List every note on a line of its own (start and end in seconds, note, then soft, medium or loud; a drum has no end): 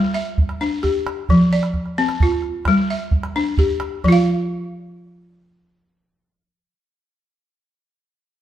0.00 0.37 G3 medium
0.00 0.15 F4 medium
0.14 0.83 E5 medium
0.14 calabash click soft
0.38 calabash thump medium
0.49 calabash click soft
0.61 1.06 D4 medium
0.61 calabash click soft
0.83 1.52 G4 medium
0.83 calabash thump medium
1.07 calabash click medium
1.29 1.75 F3 medium
1.29 calabash thump medium
1.53 2.21 D5 medium
1.63 calabash click soft
1.74 calabash thump medium
1.74 calabash click soft
1.86 calabash click soft
1.98 2.44 C4 medium
2.09 calabash click soft
2.20 2.90 F4 medium
2.20 calabash thump medium
2.32 calabash click soft
2.42 calabash click soft
2.65 3.13 G3 medium
2.65 calabash thump medium
2.65 calabash click medium
2.77 calabash click soft
2.90 3.58 E5 medium
3.11 calabash thump medium
3.23 calabash click medium
3.36 3.81 D4 medium
3.58 4.27 G4 medium
3.58 calabash thump medium
3.80 calabash click medium
4.04 7.42 F3 medium
4.04 calabash thump medium
4.08 7.46 F4 medium
4.08 7.50 F5 medium